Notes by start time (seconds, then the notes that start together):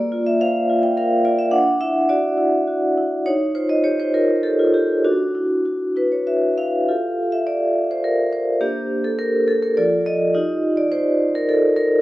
Already playing: A#3 D5
0.12 F4
0.27 E5
0.41 C5 F5
0.70 F4
0.83 G5
0.97 A#4 F5
1.25 F4 D5
1.39 E5
1.51 D4 F#5
1.81 E4 E5
2.09 F#4 D5
2.38 E4
2.68 F#4
2.98 E4
3.26 D#4 C#5
3.55 F4 C5
3.69 D#5
3.84 G4 C#5
4.00 C5
4.14 F4 A#4
4.43 G4 A4
4.59 F4
4.74 F4 G4
5.04 D4 F#4
5.35 E4
5.66 F#4
5.96 E4 B4
6.12 C#5
6.27 F#4 E5
6.58 E4 F5
6.88 F4 G4 A4
7.32 E5
7.47 D5
7.91 C5
8.04 A#4
8.33 C5
8.61 A#3 D4 G4 C5
9.05 A4
9.19 A#4
9.48 A4
9.62 A#4
9.77 F3 F4 A4 D5
10.06 D#5
10.34 D#4 F4 G4
10.77 D5
10.92 C5
11.35 A#4
11.49 A4
11.76 A#4